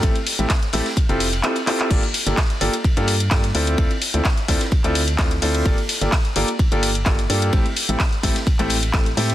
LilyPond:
<<
  \new Staff \with { instrumentName = "Grand piano" } { \time 4/4 \key g \dorian \tempo 4 = 128 <a c' e' g' a'>16 r8 <a c' e' g' a'>16 r8 <a c' e' g' a'>16 r8 <c' e' f' g' a'>16 r8 <c' e' f' g' a'>16 r16 <c' e' f' g' a'>8 | <bes d' f' g' a'>16 r8 <bes d' f' g' a'>16 r8 <bes d' f' g' a'>16 r8 <bes d' f' g' a'>16 r8 <bes d' f' g' a'>16 r16 <c' d' e' f' a'>8 | <c' d' e' f' a'>16 r8 <c' d' e' f' a'>16 r8 <c' d' e' f' a'>16 r8 <c' d' e' f' a'>16 r8 <c' d' e' f' a'>16 r16 <c' d' e' f' a'>8 | <bes d' f' g' a'>16 r8 <bes d' f' g' a'>16 r8 <bes d' f' g' a'>16 r8 <bes d' f' g' a'>16 r8 <bes d' f' g' a'>16 r16 <bes d' f' g' a'>8 |
<a c' e' g' a'>16 r8 <a c' e' g' a'>16 r8 <a c' e' g' a'>16 r8 <a c' e' g' a'>16 r8 <a c' e' g' a'>16 r16 <a c' e' g' a'>8 | }
  \new Staff \with { instrumentName = "FM bass" } { \clef bass \time 4/4 \key g \dorian a,,16 r8 a,,16 r8 a,,16 r8 f,,8. r4 | g,,16 r8 g,,16 r8 g,,16 r8 g,8. g,8 d,8 | d,16 r8 d,16 r8 d,16 r8 d,8. d,8 d,8 | g,,16 r8 g,,16 r8 g,,16 r8 g,,8. g,,8 g,8 |
a,,16 r8 a,,16 r8 a,,16 r8 a,,8. a,,8 a,8 | }
  \new DrumStaff \with { instrumentName = "Drums" } \drummode { \time 4/4 <hh bd cymr>16 hh16 <hho cymr>16 hh16 <hc hh bd cymr sn>16 hh16 <hho cymr sn>16 <hh sn>16 <hh bd cymr>16 hh16 <hho cymr>16 <hh cymr>16 <hc hh>16 <hh cymr>16 <hc hho cymr>16 <hc hh>16 | <cymc bd cymr>16 hh16 <hho cymr>16 <hh cymr>16 <hc bd cymr sn>16 hh16 <hho cymr>16 hh16 <bd cymr>16 hh16 <hho cymr>16 hh16 <hc bd cymr sn>16 hh16 <hho cymr>16 hh16 | <bd cymr>16 hh16 <hho cymr>16 hh16 <hc bd cymr sn>16 hh16 <hho bd cymr sn>16 <hh sn>16 <bd cymr>16 <hc hh>16 <hho cymr>16 <hh cymr>16 <hc bd cymr sn>16 hh16 hho16 hh16 | <bd cymr>16 hh16 <hho cymr>16 <hh cymr>16 <hc bd cymr sn>16 hh16 <hho cymr>16 hh16 <bd cymr>16 hh16 <hho cymr>16 hh16 <hc bd cymr sn>16 hh16 <hho cymr>16 hh16 |
<bd cymr>16 hh16 <hho cymr>16 hh16 <hc bd cymr sn>16 hh16 <hho bd cymr sn>16 <hh sn>16 <bd cymr>16 <hc hh>16 <hho cymr>16 <hh cymr>16 <hc bd cymr sn>16 hh16 hho16 hh16 | }
>>